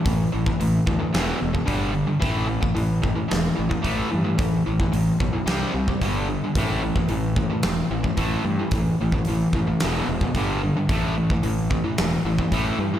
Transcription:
<<
  \new Staff \with { instrumentName = "Distorted electric guitar" } { \clef bass \time 4/4 \key a \minor \tempo 4 = 111 <a, e>8 <a, e>16 <a, e>16 <a, e>8 <a, e>16 <a, e>16 <e, b, e>8 <e, b,>16 <e, b,>16 <g, d g>8 <g, d>16 <g, d>16 | <a, e a>8 <a, e>16 <a, e>16 <a, e>8 <a, e>16 <a, e>16 <a, e>8 <a, e>16 <a, e>16 <a, e a>8 <a, e>16 <a, e>16 | <a, e>8 <a, e>16 <a, e>16 <a, e>8 <a, e>16 <a, e>16 <c g c'>8 <c g>16 <c g>16 <g, d g>8 <g, d>16 <g, d>16 | <a, e a>8 <a, e>16 <a, e>16 <a, e>8 <a, e>16 <a, e>16 <a, e>8 <a, e>16 <a, e>16 <a, e a>8 <a, e>16 <a, e>16 |
<a, e>8 <a, e>16 <a, e>16 <a, e>8 <a, e>16 <a, e>16 <e, b, e>8 <e, b,>16 <e, b,>16 <g, d g>8 <g, d>16 <g, d>16 | <a, e a>8 <a, e>16 <a, e>16 <a, e>8 <a, e>16 <a, e>16 <a, e>8 <a, e>16 <a, e>16 <a, e a>8 <a, e>16 <a, e>16 | }
  \new Staff \with { instrumentName = "Fingered electric bass" } { \clef bass \time 4/4 \key a \minor a,,8 a,,8 a,,8 d,8 e,,8 e,,8 g,,4 | a,,4 a,,4 e,,8 a,,8 a,,8 g,8 | a,,8 a,,8 a,,8 b,,8 c,8 c,8 g,,4 | a,,4 a,,4 e,,8 a,,8 a,,8 g,8 |
a,,8 a,,8 a,,8 a,,8 e,,8 e,,8 g,,4 | a,,4 a,,4 e,,8 a,,8 a,,8 g,8 | }
  \new DrumStaff \with { instrumentName = "Drums" } \drummode { \time 4/4 <hho bd>8. bd16 hho8 bd8 <hho sn>8. bd16 <hho bd>4 | <hho bd>8. bd16 hho8 bd8 <hho sn>8. bd16 <hho bd>4 | <hho bd>8. bd16 hho8 bd8 <hho sn>8. bd16 <hho bd>4 | <hho bd>8. bd16 hho8 bd8 <hho sn>8. bd16 <hho bd>4 |
<hho bd>8. bd16 hho8 bd8 <hho sn>8. bd16 <hho bd>4 | <hho bd>8. bd16 hho8 bd8 <hho sn>8. bd16 <hho bd>4 | }
>>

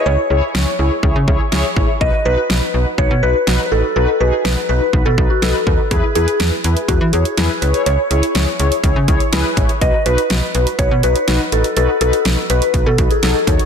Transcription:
<<
  \new Staff \with { instrumentName = "Synth bell" } { \time 4/4 \key b \mixolydian \tempo 4 = 123 cis''4. r2 r8 | dis''8 b'4. cis''8 b'8.~ b'32 b'32 a'8 | a'8 b'8 b'8 b'8. a'8 fis'16 a'8. r16 | gis'8 gis'4. fis'8 gis'4 b'8 |
cis''4. r2 r8 | dis''8 b'4. cis''8 b'4 a'8 | a'8 a'4 b'8. a'8 gis'16 a'8. r16 | }
  \new Staff \with { instrumentName = "Analog polysynth" } { \time 4/4 \key b \mixolydian <e' gis' cis''>8 <e' gis' cis''>16 r16 <e' gis' cis''>16 r16 <e' gis' cis''>16 r16 <e' gis' cis''>16 r16 <e' gis' cis''>16 r16 <e' gis' cis''>16 r16 <e' gis' cis''>16 r16 | <dis' fis' b'>16 r16 <dis' fis' b'>16 r16 <dis' fis' b'>16 r16 <dis' fis' b'>16 r16 <dis' fis' b'>16 r16 <dis' fis' b'>16 r16 <dis' fis' b'>16 r16 <dis' fis' b'>16 r16 | <dis' fis' b'>16 r16 <dis' fis' gis'>16 r16 <dis' fis' b'>16 r16 <dis' fis' b'>16 r16 <dis' fis' b'>16 r16 <dis' fis' b'>16 r16 <dis' fis' b'>16 r16 <dis' fis' b'>16 r16 | <e' gis' b'>16 r16 <e' gis' b'>16 r16 <e' gis' b'>16 r16 <e' gis' b'>16 r16 <e' gis' b'>16 r16 <e' gis' cis''>16 r16 <e' gis' b'>16 r16 <e' gis' cis''>8~ |
<e' gis' cis''>8 <e' gis' cis''>16 r16 <e' gis' cis''>16 r16 <e' gis' cis''>16 r16 <e' gis' cis''>16 r16 <e' gis' cis''>16 r16 <e' gis' b'>16 r16 <e' gis' cis''>16 r16 | <dis' fis' b'>16 r16 <dis' fis' b'>16 r16 <dis' fis' b'>16 r16 <dis' fis' b'>16 r16 <dis' fis' b'>16 r16 <dis' fis' b'>16 r16 <dis' fis' b'>16 r16 <dis' fis' b'>16 r16 | <dis' fis' b'>16 r16 <dis' fis' b'>16 r16 <dis' fis' b'>16 r16 <dis' fis' b'>16 r16 <dis' fis' b'>16 r16 <dis' fis' b'>16 r16 <dis' fis' a'>16 r16 <dis' fis' cis''>16 r16 | }
  \new Staff \with { instrumentName = "FM bass" } { \clef bass \time 4/4 \key b \mixolydian cis,16 r16 cis,16 r16 cis,16 r16 cis,16 r16 cis,16 cis16 cis,16 r16 cis,16 r16 a,,16 r16 | b,,16 r16 b,,16 r16 b,,16 r16 b,,16 r16 b,,16 b,16 b,,16 r16 b,,16 r16 a,,16 r16 | b,,16 r16 b,,16 r16 b,,16 r16 b,,16 r16 b,,16 b,16 b,,16 r16 b,,16 r16 dis,16 r16 | e,16 r16 e,16 r16 e,16 r16 e,16 r16 e,16 e16 e,16 r16 e,16 r16 cis,16 r16 |
cis,16 r16 cis,16 r16 cis,16 r16 cis,16 r16 cis,16 cis16 cis,16 r16 cis,16 r16 a,,16 r16 | b,,16 r16 b,,16 r16 b,,16 r16 b,,16 r16 b,,16 b,16 b,,16 r16 b,,16 r16 a,,16 r16 | b,,16 r16 b,,16 r16 b,,16 r16 b,,16 r16 b,,16 b,16 b,,16 r16 b,,16 r16 dis,16 r16 | }
  \new DrumStaff \with { instrumentName = "Drums" } \drummode { \time 4/4 r4 sn4 bd8 bd8 sn8 bd8 | bd4 sn4 bd4 sn4 | r4 sn4 bd8 bd8 sn8 bd8 | <hh bd>8 hh16 hh16 <hh sn>8 hh16 hh16 <hh bd>8 hh16 hh16 <hh sn>8 hh16 hh16 |
hh8 hh16 hh16 <hh sn>8 hh16 hh16 <hh bd>8 <hh bd>16 hh16 <hh sn>8 <hh bd>16 hh16 | <hh bd>8 hh16 hh16 <hh sn>8 hh16 hh16 <hh bd>8 hh16 hh16 <hh sn>8 hh16 hh16 | hh8 hh16 hh16 <hh sn>8 hh16 hh16 <hh bd>8 <hh bd>16 hh16 <hh sn>8 <hh bd>16 hh16 | }
>>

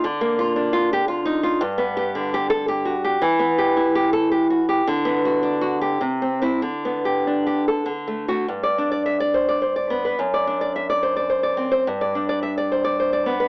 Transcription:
\new Staff \with { instrumentName = "Nylon-string guitar" } { \time 3/4 \key bes \major \tempo 4 = 107 << { r4 \tuplet 3/2 { r4 g'8 } r4 | \key g \major r4 \tuplet 3/2 { r4 a'8 } r4 | r4 \tuplet 3/2 { r4 a'8 } r4 | r4 \tuplet 3/2 { r4 g'8 r4 e'8 } |
r4 \tuplet 3/2 { r4 a'8 r4 fis'8 } | r4 e''16 r4. r16 | r4 e''16 r4. r16 | r4 e''16 r4. r16 | } \\ { \tuplet 3/2 { d8 bes8 f'8 d'8 f'4 f'8 ees'8 f'8 } | \tuplet 3/2 { g,8 b8 g'8 d8 g'4 g'8 fis'8 g'8 } | \tuplet 3/2 { e8 b8 g'8 e'8 g'4 g'8 fis'8 g'8 } | \tuplet 3/2 { d8 b8 fis'8 d'8 fis'4 c8 c'8 c'8 } |
\tuplet 3/2 { d8 b8 g'8 d'8 g'4 d8 a8 a8 } | g,16 d''16 d'16 d''8 d''16 c''16 d''16 c''16 d''16 b16 b'16 | fis,16 d''16 d'16 d''8 d''16 c''16 d''16 c''16 d''16 c'16 c''16 | g,16 d''16 d'16 d''8 d''16 c''16 d''16 c''16 d''16 b16 b'16 | } >> }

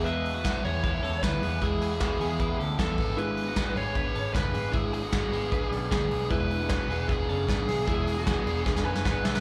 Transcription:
<<
  \new Staff \with { instrumentName = "Lead electric guitar" } { \time 4/4 \key e \mixolydian \tempo 4 = 153 b'4. cis''4. b'4 | gis'8 gis'2 r8 a'4 | b'4. cis''4. b'4 | gis'8 gis'2 r8 gis'4 |
b'4 b'4 gis'2~ | gis'2~ gis'8 b'4. | }
  \new Staff \with { instrumentName = "Synth keys" } { \time 4/4 \key e \mixolydian << { r1 | r1 | r1 | r1 |
r1 | r2 r8 gis''8 fis''8 e''8 | } \\ { r1 | r1 | <b d' gis'>1~ | <b d' gis'>2~ <b d' gis'>8 <b d' gis'>4. |
<d' e' gis'>1~ | <d' e' gis'>1 | } >> }
  \new Staff \with { instrumentName = "Clean electric guitar" } { \time 4/4 \key e \mixolydian <gis e'>8. <a fis'>16 <b fis'>8 <b gis'>8 <e' b'>8 <cis' a'>8 <e' b'>8 <b gis'>8 | <gis e'>8. <a fis'>16 <b fis'>8 <b gis'>8 <e' b'>8 <cis' a'>8 <b gis''>4 | <gis e'>8. <a fis'>16 <b fis'>8 <b gis'>8 <d' b'>8 <cis' a'>8 <d' b'>8 <b gis'>8 | <gis e'>8. <a fis'>16 <b fis'>8 <b gis'>8 <d' b'>8 <cis' a'>8 <b gis'>4 |
<gis e'>8. <a fis'>16 <b fis'>8 <b gis'>8 <d' b'>8 <cis' a'>8 <d' b'>8 <b gis'>8 | <gis e'>8. <a fis'>16 <b fis'>8 <b gis'>8 <d' b'>8 <cis' a'>8 <b gis'>4 | }
  \new Staff \with { instrumentName = "Overdriven electric guitar" } { \time 4/4 \key e \mixolydian <e gis b e'>4 <e gis b e'>8 <e gis b e'>8. <gis b e'>8. <e gis b e'>4 | <e gis b e'>4 <e gis b e'>8 <e gis b e'>8. <gis b e'>8. <e gis b e'>8 <gis d' gis' b'>8~ | <gis d' gis' b'>4 <gis d' gis' b'>8 <gis d' gis' b'>8. <d' gis' b'>8. <gis d' gis' b'>4 | <gis d' gis' b'>4 <gis d' gis' b'>8 <gis d' gis' b'>8. <d' gis' b'>8. <gis d' gis' b'>4 |
<e b d' gis'>4 <e b d' gis'>8 <e b d' gis'>8. <b d' gis'>8. <e b d' gis'>4 | <e b d' gis'>4 <e b d' gis'>8 <e b d' gis'>8. <b d' gis'>8. <e b d' gis'>4 | }
  \new Staff \with { instrumentName = "Picked electric bass" } { \clef bass \time 4/4 \key e \mixolydian e,4~ e,16 r16 e,4 e,8 d,8 e,8 | e,4. e,4 d,8 e,8 gis,,8~ | gis,,4~ gis,,16 r16 gis,,4 gis,,8 fis,,8 gis,,8 | gis,,4 gis,8 gis,,4 b,,8 d,8 b,,8 |
e,,4~ e,,16 r16 e,,4 fis,,8 gis,,8 b,,8 | e,,4~ e,,16 r16 e,,4 fis,,8 gis,,8 b,,8 | }
  \new DrumStaff \with { instrumentName = "Drums" } \drummode { \time 4/4 hh8 hho8 <hh bd sn>8 hho8 <hh bd>8 hho8 <bd sn>8 hho8 | <hh bd>8 hho8 <hh bd sn>8 hho8 <hh bd>8 hho8 <hh bd sn>8 <hho bd>8 | hh8 hho8 <hh bd sn>8 hho8 <hh bd>8 hho8 <hh bd sn>8 hho8 | <hh bd>8 hho8 <hh bd sn>8 hho8 <hh bd>8 hho8 <bd sn>8 hho8 |
<hh bd>8 hho8 <hh bd sn>8 hho8 <hh bd>8 hho8 <hh bd sn>8 hho8 | <hh bd>8 hho8 <hh bd sn>8 hho8 <bd sn>16 sn8 sn16 <bd sn>8 sn16 sn16 | }
>>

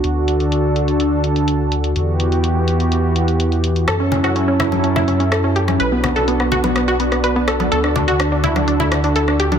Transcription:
<<
  \new Staff \with { instrumentName = "Analog synth pad" } { \time 4/4 \key d \major \tempo 4 = 125 << { <d d' fis' a'>1 | <e b g'>1 | <fis cis' a'>1 | <b fis'>1 |
<d a'>1 | } \\ { r1 | fis'1 | e'1 | d'1~ |
d'1 | } >> }
  \new Staff \with { instrumentName = "Synth pluck" } { \time 4/4 \key d \major r1 | r1 | a'16 cis'16 cis'16 fis'16 cis'16 cis'16 e'16 cis'16 cis'16 e'16 cis'16 cis'16 a'16 cis'16 g'16 cis'16 | b'16 b16 b16 a'16 b16 b16 fis'16 b16 b16 fis'16 b16 b16 b'16 b16 a'16 b16 |
a'16 d'16 d'16 fis'16 d'16 d'16 e'16 d'16 d'16 e'16 d'16 d'16 a'16 d'16 g'16 d'16 | }
  \new Staff \with { instrumentName = "Analog synth bass" } { \clef bass \time 4/4 \key d \major d,1 | e,1 | fis,1 | b,,1 |
d,1 | }
  \new DrumStaff \with { instrumentName = "Drums" } \drummode { \time 4/4 hh8 hh16 hh16 hh8 hh16 hh16 hh8 hh16 hh16 hh8 hh16 hh16 | hh8 hh16 hh16 hh8 hh16 hh16 hh8 hh16 hh16 hh16 hh16 hh16 hh16 | <hh ss>8 <cgl hh>16 <hh ss>16 hh8 <cgl hh ss>16 <cgho hh>16 hh16 <cgl ss>16 hh16 hh16 <hh ss>8 hh16 <cgho hh ss>16 | hh8 <cgl hh ss>16 hh16 hh16 ss16 <cgl hh>16 <cgho hh>16 <hh ss>8 hh16 <hh ss>16 hh8 <hh ss>16 <cgho hh>16 |
hh16 ss16 <cgl hh>16 hh16 <hh ss>8 <cgl hh>16 <cgho hh ss>16 hh16 cgl16 <hh ss>16 hh16 hh16 ss16 hh16 <cgho hh>16 | }
>>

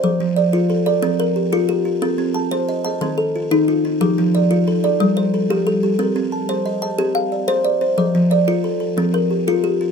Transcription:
<<
  \new Staff \with { instrumentName = "Kalimba" } { \time 12/8 \key f \mixolydian \tempo 4. = 121 << { r4 d''8 f'4 a'4. g'4. r8 | a'4 a''8 c''4 ees''4. f'4. r8 | g'4 d''8 f'4 a'4. a'4. r8 | bes'4 a''8 c''4 ees''4. d''4. r8 |
ees''4 d''8 f'4 a'4. g'4. r8 | } \\ { c''8 f4 r8 a'4 f4 r8 f'4 f'8~ | f'8 c'4 r8 ees''4 c'8 r4 ees4 ees'8~ | ees'8 f4 r8 a'4 f8 r4 g4 g'8~ | g'8 c'4 r8 ees''4 c'4 r8 c''4 c''8~ |
c''8 f4 r8 a'4 f4 r8 f'4 f'8 | } >> }
  \new Staff \with { instrumentName = "Kalimba" } { \time 12/8 \key f \mixolydian << { d''8 r8 d''4. d''4 bes'4. g'4~ | g'8 r8 a''4. a''4 a'4. f'4~ | f'8 r8 d''8 f'4 d''4 c''4. a'4~ | a'8 r4 c''4 a''4 f''4. d''4~ |
d''8 r8 d''4. r4 bes'4. g'4 | } \\ { f4 r8 f'4 r8 c'4 r8 f'4 r8 | c'4 r8 c''4 r8 ees4 r8 ees'4 r8 | f4 r2 g4 r8 g'4 r8 | c'4 r2 g'4 r8 c''4 r8 |
f4 r8 f'4 r8 c'4 r8 f'4 r8 | } >> }
>>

